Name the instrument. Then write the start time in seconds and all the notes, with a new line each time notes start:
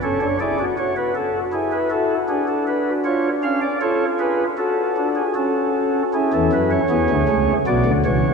pipe organ
0.03 C#4 A4 C#5
0.21 D4 C#5
0.40 E4 G#4 D5
0.59 F#4
0.78 F#4 C#5
0.96 B4
1.15 A4
1.53 E4 G#4
1.72 B4
1.90 F#4 A4
2.29 D4 G#4
2.48 A4
2.67 B4
3.05 F4 C#5
3.43 C#4 F5
3.62 D5
3.81 F4 A4 C#5
4.19 G#4 B4
4.58 F#4 A4
4.97 D4
5.15 G#4
5.35 C#4 F#4 A4
6.14 C#4 E4 G#4
6.33 E2 E3 A4
6.53 F#2 F#3 B4
6.71 C#5
6.90 E2 E3 B3 G#4
7.10 D2 D3
7.28 C#2 C#3 A3
7.67 B1 B2 B3 F#4 D5
7.86 D2 D3
8.05 C#2 C#3 E3 C#5